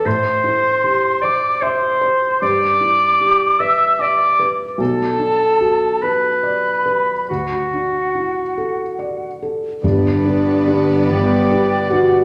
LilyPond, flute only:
\new Staff \with { instrumentName = "Flute" } { \time 6/8 \key g \major \tempo 4. = 49 c'''4. d'''8 c'''4 | d'''4. e'''8 d'''8 r8 | a''4. b''4. | fis''2~ fis''8 r8 |
d''4. g''4 fis''8 | }